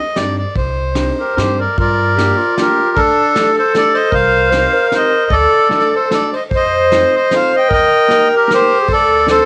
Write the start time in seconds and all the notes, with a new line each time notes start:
Already playing: D#5
0.16 G2 C4 D4 D#4 G4 D5, snare, ride
0.38 D5
0.55 C2 C5, kick, ride
0.95 C4 D4 D#4 G4, snare, ride
1.19 G4 A#4
1.36 G2 C4 D4 D#4 G4 C5, snare, ride
1.59 A#4 D5
1.77 G2 F4 A#4 D5, kick, ride
2.16 A#3 D4 F4 G4, snare, ride
2.37 F4
2.57 A#3 D4 F4 G4 A#4, snare, ride
2.95 D2 D4 A4, kick, ride
3.35 A3 D4 G4 A4, snare, ride
3.57 A4 C5
3.74 A3 D4 G4 A4 D5, snare, ride
3.94 C5 D#5, ride
4.11 C2 A#4 C5 F5, kick, ride
4.51 C4 D#4 G4 C5, snare, ride
4.55 A#4
4.73 A#4
4.92 C4 D#4 G4 A#4 C5, snare, ride
4.97 D#5
5.30 D2 A4 D5, kick, ride
5.69 A3 D4 F#4 A4, snare, ride
5.94 A4 C5
6.10 A3 D4 F#4 A4 D5, snare, ride
6.33 C5 D#5, ride
6.50 F2 C5, kick, ride
6.55 C5 D#5
6.92 C4 D#4 F4 A4, snare, ride
7.15 C5 D#5
7.31 C4 D#4 F4 A4 C5, snare, ride
7.36 F5
7.56 D#5 G5
7.69 D#2 A#4 D#5, kick, ride
7.75 G5
8.08 A#3 D#4 G4 A#4, snare, ride
8.36 G4 A#4
8.48 A#3 D#4 G4 A#4, snare, ride
8.53 G4 C5
8.71 ride
8.80 G#4
8.87 D2 A4, kick, ride
8.92 A4 D5
9.26 C4 D4 F#4 A4, snare, ride
9.31 C5